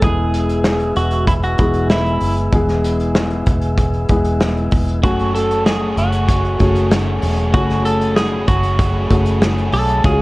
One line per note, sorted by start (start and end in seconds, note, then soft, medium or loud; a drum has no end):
0.00 0.92 E1 medium
0.00 0.93 E3 medium
0.00 0.94 G#3 medium
0.00 0.94 B3 medium
0.00 0.95 E4 medium
0.00 0.95 G#4 medium
0.00 0.93 G#4 loud
0.00 4.99 B4 medium
0.00 5.00 E5 medium
0.00 10.00 G#5 medium
0.00 4.99 E6 medium
0.00 kick loud
0.00 closed hi-hat medium
0.34 closed hi-hat medium
0.49 closed hi-hat soft
0.64 snare loud
0.64 closed hi-hat medium
0.80 closed hi-hat soft
0.96 1.55 E1 medium
0.96 1.27 F#4 medium
0.96 closed hi-hat medium
1.11 closed hi-hat soft
1.27 1.33 E4 medium
1.27 kick medium
1.27 closed hi-hat medium
1.43 1.90 F#4 medium
1.43 closed hi-hat soft
1.58 2.18 E1 loud
1.58 2.27 G#3 medium
1.58 2.28 B3 medium
1.58 2.28 E4 medium
1.58 2.29 G#4 medium
1.58 kick medium
1.58 closed hi-hat medium
1.74 closed hi-hat soft
1.90 2.34 E4 medium
1.90 snare loud
1.90 closed hi-hat medium
2.06 closed hi-hat soft
2.21 2.51 F#1 medium
2.21 open hi-hat medium
2.37 closed hi-hat soft
2.52 3.43 E1 medium
2.52 3.43 E3 medium
2.52 3.45 G#3 medium
2.52 3.45 B3 medium
2.52 3.45 E4 medium
2.52 3.46 G#4 medium
2.52 kick loud
2.52 closed hi-hat medium
2.69 snare soft
2.69 closed hi-hat soft
2.84 closed hi-hat medium
3.00 closed hi-hat soft
3.15 snare loud
3.15 closed hi-hat medium
3.30 closed hi-hat soft
3.46 4.05 E1 loud
3.46 kick medium
3.46 closed hi-hat medium
3.62 closed hi-hat soft
3.78 kick medium
3.78 closed hi-hat medium
3.94 closed hi-hat soft
4.09 4.68 E1 medium
4.09 4.78 G#3 medium
4.09 4.78 B3 medium
4.09 4.79 E4 medium
4.09 4.79 G#4 medium
4.09 kick medium
4.09 closed hi-hat medium
4.25 closed hi-hat soft
4.41 snare loud
4.41 closed hi-hat medium
4.57 closed hi-hat soft
4.71 5.03 E1 medium
4.71 kick medium
4.71 open hi-hat medium
4.88 closed hi-hat soft
5.03 5.93 F#1 medium
5.03 5.64 F#3 medium
5.03 5.95 A3 medium
5.03 5.65 A3 medium
5.03 10.00 A3 medium
5.03 5.95 C#4 medium
5.03 5.66 C#4 medium
5.03 5.34 F#4 medium
5.03 5.95 F#4 medium
5.03 5.67 G#4 medium
5.03 10.00 F#5 medium
5.03 5.95 G#5 medium
5.03 7.51 C#6 medium
5.03 kick loud
5.03 closed hi-hat medium
5.19 closed hi-hat soft
5.35 5.66 A4 medium
5.35 closed hi-hat medium
5.51 closed hi-hat soft
5.66 5.97 F#3 medium
5.66 5.97 A3 medium
5.66 5.96 C#4 medium
5.66 5.95 G#4 medium
5.66 5.95 G#4 loud
5.66 snare loud
5.66 closed hi-hat medium
5.96 6.56 F#1 medium
5.96 6.28 A3 soft
5.96 6.28 C#4 medium
5.96 6.88 F#4 medium
5.96 6.28 G#4 medium
5.96 closed hi-hat medium
6.12 closed hi-hat soft
6.28 6.60 F#3 medium
6.28 6.60 A3 medium
6.28 6.59 C#4 medium
6.28 6.58 G#4 medium
6.28 kick medium
6.28 closed hi-hat medium
6.45 closed hi-hat soft
6.59 7.18 F#1 loud
6.59 7.28 A3 medium
6.59 6.90 A3 soft
6.59 7.28 C#4 medium
6.59 6.90 C#4 soft
6.59 7.29 F#4 medium
6.59 6.91 G#4 medium
6.59 7.29 G#4 medium
6.59 kick medium
6.59 closed hi-hat medium
6.75 closed hi-hat soft
6.90 7.52 F#3 medium
6.90 7.52 A3 medium
6.90 7.54 C#4 medium
6.90 7.54 G#4 medium
6.90 snare loud
6.90 closed hi-hat medium
7.22 7.54 E1 medium
7.22 open hi-hat medium
7.38 closed hi-hat soft
7.53 8.44 F#1 loud
7.53 8.15 F#3 medium
7.53 8.45 A3 medium
7.53 8.16 A3 medium
7.53 8.45 C#4 medium
7.53 8.17 C#4 medium
7.53 7.83 F#4 loud
7.53 8.46 F#4 medium
7.53 8.17 G#4 loud
7.53 8.46 G#5 medium
7.53 10.01 B5 medium
7.53 kick loud
7.53 closed hi-hat medium
7.70 snare soft
7.70 closed hi-hat soft
7.85 8.16 A4 medium
7.85 closed hi-hat medium
8.01 closed hi-hat soft
8.16 8.47 F#3 medium
8.16 8.48 A3 medium
8.16 8.47 C#4 medium
8.16 8.47 G#4 medium
8.16 8.46 G#4 medium
8.16 snare loud
8.16 closed hi-hat medium
8.47 9.06 F#1 medium
8.47 8.78 A3 soft
8.47 8.78 C#4 medium
8.47 9.38 F#4 medium
8.47 8.78 G#4 soft
8.47 kick medium
8.47 closed hi-hat medium
8.63 closed hi-hat soft
8.78 9.10 F#3 medium
8.78 9.10 A3 medium
8.78 9.09 C#4 medium
8.78 9.08 G#4 medium
8.78 kick medium
8.78 closed hi-hat medium
9.09 9.69 F#1 loud
9.09 9.79 A3 medium
9.09 9.41 A3 soft
9.09 9.79 C#4 medium
9.09 9.41 C#4 soft
9.09 9.79 F#4 medium
9.09 9.41 G#4 medium
9.09 9.79 G#4 medium
9.09 kick medium
9.09 closed hi-hat medium
9.26 closed hi-hat soft
9.41 10.04 F#3 medium
9.41 10.04 A3 medium
9.41 10.04 C#4 medium
9.41 10.05 G#4 medium
9.41 snare loud
9.41 closed hi-hat medium
9.58 closed hi-hat soft
9.72 10.02 B1 medium
9.72 10.05 A4 loud
9.72 open hi-hat medium
9.89 closed hi-hat soft
10.03 10.22 C#2 medium
10.03 10.22 C#3 medium
10.03 10.22 G#3 medium
10.03 10.22 C#4 medium
10.03 10.22 F4 medium
10.03 10.11 F#4 medium
10.03 10.22 G#4 medium
10.03 10.22 G#4 loud
10.03 10.22 C#5 medium
10.03 10.22 F5 medium
10.03 10.22 G#5 medium
10.03 10.22 C#6 medium
10.03 kick loud
10.03 closed hi-hat medium
10.11 10.22 G#4 medium